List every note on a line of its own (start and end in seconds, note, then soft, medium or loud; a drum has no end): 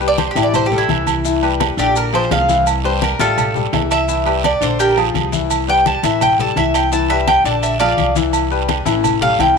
0.00 0.30 C2 medium
0.00 0.30 G3 medium
0.00 0.30 G4 medium
0.00 0.30 B4 medium
0.00 high conga soft
0.00 maracas soft
0.08 0.18 D5 loud
0.18 0.30 C5 medium
0.18 high conga loud
0.18 low agogo medium
0.18 short guiro medium
0.18 maracas soft
0.31 0.42 G4 medium
0.35 0.85 A1 medium
0.35 0.65 E3 medium
0.35 0.65 E4 medium
0.35 0.66 E5 medium
0.35 high conga medium
0.35 low agogo medium
0.35 short guiro medium
0.35 maracas medium
0.43 0.54 D5 medium
0.54 0.66 C5 loud
0.54 high conga soft
0.54 low conga medium
0.54 low agogo loud
0.54 long guiro medium
0.54 maracas medium
0.66 0.77 G4 medium
0.72 0.86 G3 medium
0.72 0.86 G4 medium
0.72 0.87 A4 medium
0.72 high conga soft
0.72 low conga medium
0.72 maracas soft
0.78 1.47 E4 medium
0.89 1.72 C2 medium
0.89 1.19 E3 medium
0.89 1.19 E4 medium
0.89 1.19 E5 medium
0.89 high conga loud
0.89 low agogo medium
0.89 short guiro medium
0.89 maracas soft
1.07 high conga medium
1.07 low agogo loud
1.07 short guiro medium
1.07 maracas medium
1.25 1.39 E3 medium
1.25 1.40 E4 medium
1.25 1.40 E5 medium
1.25 high conga soft
1.25 long guiro medium
1.25 maracas loud
1.42 1.71 G3 medium
1.42 1.72 G4 medium
1.42 1.72 B4 medium
1.42 high conga soft
1.42 low agogo medium
1.42 maracas soft
1.60 high conga loud
1.60 low agogo loud
1.60 short guiro medium
1.60 maracas soft
1.77 2.27 A#1 loud
1.77 2.07 D3 medium
1.77 2.07 D4 medium
1.77 1.96 G4 loud
1.77 2.08 D5 medium
1.77 short guiro medium
1.77 maracas medium
1.96 2.14 A#4 medium
1.96 high conga soft
1.96 low agogo medium
1.96 long guiro medium
1.96 maracas medium
2.13 2.42 F3 medium
2.13 2.42 F4 medium
2.13 2.43 G#4 medium
2.13 2.31 C5 loud
2.13 high conga soft
2.13 low agogo loud
2.13 maracas soft
2.31 3.14 C2 loud
2.31 2.66 F5 loud
2.31 high conga medium
2.31 low timbale medium
2.31 low agogo medium
2.31 short guiro medium
2.31 maracas soft
2.48 2.78 E3 medium
2.48 2.78 E4 medium
2.48 2.78 E5 medium
2.48 high conga medium
2.48 short guiro medium
2.48 maracas medium
2.66 high conga soft
2.66 low agogo loud
2.66 long guiro medium
2.66 maracas medium
2.84 3.13 G3 medium
2.84 3.14 G4 medium
2.84 3.14 B4 medium
2.84 3.02 C5 medium
2.84 high conga soft
2.84 maracas soft
3.02 3.20 A#4 medium
3.02 high conga loud
3.02 low agogo medium
3.02 short guiro medium
3.02 maracas soft
3.19 3.69 A1 loud
3.19 3.49 G3 medium
3.19 3.53 F4 loud
3.19 3.49 G4 medium
3.19 3.55 A4 loud
3.19 3.49 E5 medium
3.19 high conga medium
3.19 low agogo medium
3.19 short guiro medium
3.19 maracas medium
3.38 high conga soft
3.38 low conga medium
3.38 low agogo loud
3.38 long guiro medium
3.38 maracas medium
3.55 3.70 G3 medium
3.55 3.70 G4 medium
3.55 3.70 A4 medium
3.55 high conga soft
3.55 low conga medium
3.55 maracas soft
3.73 4.56 C2 medium
3.73 4.02 E3 medium
3.73 4.02 E4 medium
3.73 4.02 E5 medium
3.73 high conga medium
3.73 low timbale medium
3.73 low agogo medium
3.73 short guiro medium
3.73 maracas soft
3.91 4.43 E5 loud
3.91 low agogo loud
3.91 short guiro medium
3.91 maracas medium
4.08 4.23 E3 medium
4.08 4.23 E4 medium
4.08 4.23 E5 medium
4.08 high conga soft
4.08 long guiro medium
4.08 maracas medium
4.26 4.55 G3 medium
4.26 4.55 G4 medium
4.26 4.55 B4 medium
4.26 high conga soft
4.26 low agogo loud
4.26 maracas soft
4.44 4.62 D5 medium
4.44 high conga loud
4.44 low agogo loud
4.44 short guiro medium
4.44 maracas soft
4.61 5.11 A#1 medium
4.61 4.90 D3 medium
4.61 4.90 D4 medium
4.61 4.79 C5 medium
4.61 4.91 D5 medium
4.61 short guiro medium
4.61 maracas medium
4.79 4.96 G4 medium
4.79 4.97 A#4 loud
4.79 high conga soft
4.79 low agogo medium
4.79 long guiro medium
4.79 maracas medium
4.97 5.26 F3 medium
4.97 5.26 F4 medium
4.97 5.27 G#4 medium
4.97 high conga soft
4.97 low agogo loud
4.97 maracas soft
5.14 5.97 C2 medium
5.14 high conga medium
5.14 low agogo medium
5.14 short guiro medium
5.14 maracas soft
5.32 5.61 E3 medium
5.32 5.62 E4 medium
5.32 5.62 E5 medium
5.32 high conga medium
5.32 short guiro medium
5.32 maracas medium
5.50 high conga soft
5.50 low agogo loud
5.50 long guiro medium
5.50 maracas loud
5.68 5.97 G3 medium
5.68 5.97 G4 medium
5.68 5.97 B4 medium
5.68 5.86 G5 loud
5.68 high conga soft
5.68 maracas soft
5.86 6.03 A5 medium
5.86 high conga loud
5.86 low agogo medium
5.86 short guiro medium
5.86 maracas soft
6.03 6.53 A1 loud
6.03 6.33 E3 medium
6.03 6.33 E4 medium
6.03 6.33 E5 medium
6.03 6.21 E5 medium
6.03 high conga loud
6.03 low agogo medium
6.03 short guiro medium
6.03 maracas medium
6.21 6.39 G5 loud
6.21 high conga soft
6.21 low conga medium
6.21 low agogo loud
6.21 long guiro medium
6.21 maracas medium
6.39 6.53 G3 medium
6.39 6.54 G4 medium
6.39 6.54 A4 medium
6.39 6.57 A5 loud
6.39 high conga soft
6.39 low conga medium
6.39 maracas soft
6.56 7.39 C2 medium
6.56 6.85 E3 medium
6.56 6.86 E4 medium
6.56 6.74 E5 medium
6.56 6.86 E5 medium
6.56 high conga medium
6.56 low agogo medium
6.56 short guiro medium
6.56 maracas soft
6.74 6.92 G5 medium
6.74 low agogo loud
6.74 short guiro medium
6.74 maracas medium
6.92 7.06 E3 medium
6.92 7.06 E4 medium
6.92 7.07 E5 medium
6.92 7.09 A5 medium
6.92 high conga soft
6.92 long guiro medium
6.92 maracas medium
7.10 7.39 G3 medium
7.10 7.39 G4 medium
7.10 7.39 B4 medium
7.10 7.27 E5 loud
7.10 high conga soft
7.10 low agogo medium
7.10 maracas soft
7.27 7.45 G5 loud
7.27 high conga loud
7.27 low agogo loud
7.27 short guiro medium
7.27 maracas soft
7.44 7.94 A#1 medium
7.44 7.74 D3 medium
7.44 7.74 D4 loud
7.44 7.74 D5 medium
7.44 7.62 A5 medium
7.44 short guiro medium
7.44 maracas medium
7.63 7.79 E5 medium
7.63 high conga soft
7.63 low agogo medium
7.63 long guiro medium
7.63 maracas medium
7.80 8.09 F3 medium
7.80 8.09 F4 medium
7.80 8.10 G#4 medium
7.80 8.13 D5 loud
7.80 8.15 F5 loud
7.80 high conga soft
7.80 low agogo loud
7.80 maracas soft
7.98 8.81 C2 medium
7.98 high conga medium
7.98 low agogo medium
7.98 short guiro medium
7.98 maracas soft
8.16 8.45 E3 medium
8.16 8.45 E4 medium
8.16 8.45 E5 medium
8.16 high conga medium
8.16 short guiro medium
8.16 maracas medium
8.33 high conga soft
8.33 low agogo loud
8.33 long guiro medium
8.33 maracas loud
8.51 8.80 G3 medium
8.51 8.80 G4 medium
8.51 8.80 B4 medium
8.51 high conga soft
8.51 maracas soft
8.68 high conga loud
8.68 low agogo medium
8.68 short guiro medium
8.68 maracas soft
8.85 9.35 A1 loud
8.85 9.15 E3 loud
8.85 9.15 E4 loud
8.85 9.15 E5 medium
8.85 high conga medium
8.85 low agogo medium
8.85 short guiro medium
8.85 maracas medium
9.04 high conga soft
9.04 low conga medium
9.04 low agogo loud
9.04 long guiro medium
9.04 maracas medium
9.21 9.36 G3 medium
9.21 9.36 G4 medium
9.21 9.36 A4 medium
9.21 9.39 F5 loud
9.21 high conga soft
9.21 low conga medium
9.21 maracas soft
9.39 9.58 C2 medium
9.39 9.58 E3 medium
9.39 9.58 E4 medium
9.39 9.58 E5 medium
9.39 9.57 G5 medium
9.39 high conga medium
9.39 low agogo medium
9.39 short guiro medium
9.39 maracas soft